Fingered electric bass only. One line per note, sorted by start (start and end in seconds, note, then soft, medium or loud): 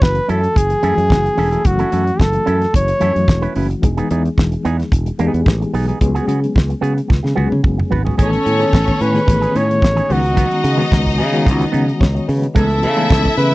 0.02 0.19 F#1 medium
0.29 0.46 F#2 medium
0.56 0.73 F#1 loud
0.83 0.93 F#2 medium
0.97 1.12 F#2 medium
1.10 1.28 F#1 medium
1.38 1.55 E1 medium
1.65 1.82 F#1 loud
1.93 2.10 F#2 medium
2.20 2.37 F#1 medium
2.48 2.65 F#2 loud
2.74 2.91 F#1 loud
3.02 3.11 F#2 medium
3.16 3.24 F#2 medium
3.28 3.45 E1 loud
3.56 3.73 F#1 loud
3.83 4.00 E1 loud
4.11 4.28 E2 loud
4.38 4.55 E1 loud
4.65 4.82 E2 loud
4.92 5.09 E1 loud
5.19 5.28 E2 medium
5.34 5.42 E2 medium
5.46 5.63 A1 loud
5.74 5.91 B1 medium
6.01 6.18 C#2 loud
6.28 6.45 C#3 medium
6.56 6.73 C#2 loud
6.82 7.00 C#3 medium
7.10 7.19 C#2 medium
7.24 7.32 C#3 medium
7.37 7.46 C#2 medium
7.52 7.60 C#3 medium
7.64 7.81 F#1 medium
7.92 8.09 G#1 loud
8.19 8.36 A1 medium
8.46 8.63 A2 medium
8.73 8.91 A1 medium
9.01 9.18 A2 medium
9.28 9.45 A1 loud
9.55 9.84 A2 medium
9.82 10.00 A1 loud
10.10 10.45 C#2 loud
10.64 10.81 C#3 loud
10.92 11.20 C#2 loud
11.19 11.48 C#3 medium
11.46 11.64 C#2 loud
11.74 11.91 C#3 medium
12.01 12.18 C#2 loud
12.29 12.46 C#3 loud
12.56 12.84 C#2 loud
12.83 13.12 C#3 loud
13.10 13.27 C#2 loud
13.38 13.54 C#3 medium